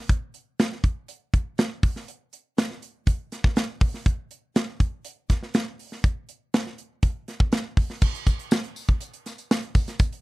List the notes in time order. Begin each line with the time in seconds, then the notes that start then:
0.09 kick, closed hi-hat
0.34 closed hi-hat
0.59 snare, closed hi-hat
0.72 snare
0.84 kick, closed hi-hat
1.08 closed hi-hat
1.34 kick, closed hi-hat
1.58 snare, closed hi-hat
1.83 kick, open hi-hat
1.96 snare
2.08 closed hi-hat
2.33 closed hi-hat
2.58 snare, closed hi-hat
2.71 snare
2.82 closed hi-hat
3.07 kick, closed hi-hat
3.32 snare, closed hi-hat
3.44 kick, snare
3.56 snare, closed hi-hat
3.81 kick, open hi-hat
3.94 snare
4.06 kick, closed hi-hat
4.31 closed hi-hat
4.56 snare, closed hi-hat
4.80 kick, closed hi-hat
5.05 closed hi-hat
5.30 kick, snare, closed hi-hat
5.43 snare
5.54 snare, closed hi-hat
5.79 open hi-hat
5.92 snare
6.04 kick, closed hi-hat
6.29 closed hi-hat
6.54 snare, closed hi-hat
6.67 snare
6.78 closed hi-hat
7.03 kick, closed hi-hat
7.28 snare, closed hi-hat
7.40 kick
7.52 snare, closed hi-hat
7.77 kick, open hi-hat
7.90 snare
8.02 kick, crash, tambourine
8.15 closed hi-hat
8.26 kick, closed hi-hat, tambourine
8.39 closed hi-hat
8.51 snare, tambourine
8.64 closed hi-hat
8.76 open hi-hat, tambourine
8.88 kick, closed hi-hat
9.01 closed hi-hat, tambourine
9.14 closed hi-hat
9.26 snare, closed hi-hat, tambourine
9.38 closed hi-hat, tambourine
9.51 snare, tambourine
9.62 closed hi-hat
9.75 kick, open hi-hat, tambourine
9.87 snare, closed hi-hat, tambourine
9.99 kick, closed hi-hat, tambourine
10.12 closed hi-hat